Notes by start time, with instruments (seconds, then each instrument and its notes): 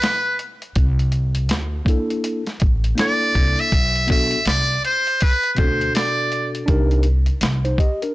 Already playing: muted trumpet B4
0.02 snare, closed hi-hat
0.39 closed hi-hat
0.62 closed hi-hat
0.76 upright bass C2, kick, closed hi-hat
0.99 closed hi-hat
1.12 closed hi-hat
1.35 closed hi-hat
1.49 upright bass D2, snare, closed hi-hat
1.85 tine electric piano A#3 D4 E4, kick, closed hi-hat
1.89 tine electric piano A4
2.10 closed hi-hat
2.24 closed hi-hat
2.47 snare, closed hi-hat
2.60 upright bass A1, kick, closed hi-hat
2.84 closed hi-hat
2.95 tine electric piano A#3 D4 E4, closed hi-hat
2.99 tine electric piano A4, muted trumpet D5, snare
3.35 upright bass C2, kick, closed hi-hat
3.59 muted trumpet E5, closed hi-hat
3.72 upright bass B1, kick, closed hi-hat
3.96 closed hi-hat
4.07 tine electric piano B3 D4 F#4 A4, kick, closed hi-hat
4.12 muted trumpet E5
4.31 closed hi-hat
4.45 upright bass C2, muted trumpet D5, snare, closed hi-hat
4.85 muted trumpet C5, closed hi-hat
5.07 closed hi-hat
5.21 muted trumpet B4, kick, closed hi-hat
5.43 closed hi-hat
5.53 tine electric piano B2 C4, muted trumpet B4, closed hi-hat
5.57 upright bass D2, tine electric piano F#4 A4, muted trumpet C5, kick
5.63 tine electric piano D4
5.81 closed hi-hat
5.95 muted trumpet D5, snare, closed hi-hat
6.32 closed hi-hat
6.55 closed hi-hat
6.66 upright bass C2, tine electric piano D4 D#4 G4 A#4, kick, closed hi-hat
6.91 closed hi-hat
7.03 closed hi-hat
7.26 closed hi-hat
7.41 upright bass C2, snare, closed hi-hat
7.65 tine electric piano D#4 C5, closed hi-hat
7.78 tine electric piano G4 D#5, kick, closed hi-hat
8.02 tine electric piano D4 A#4, closed hi-hat